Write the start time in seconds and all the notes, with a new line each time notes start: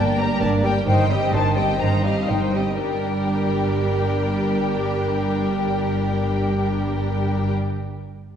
Already playing: G1 G2 A#3 D4 A#4 D5 G5
0.18 G3 A#3 G4 A#4 A#5
0.41 G1 G2 A#3 D4 A#4 D5 A5
0.64 G3 A#3 G4 A#4 G5
0.87 G1 G2 D#3 D#4 C5 G5
1.10 G3 C4 G4 D#5
1.33 G1 G2 D#3 D#4 C5 A5
1.57 G3 C4 G4 D#5 G5
1.80 G1 G2 D#3 D#4 C5 A#5
2.04 G3 C4 G4 D#5 F5
2.29 G1 G2 D#3 D#4 C5 G5
2.54 G3 C4 G4 D#5
2.79 G1 G2 G3 D4 G4 A#4 G5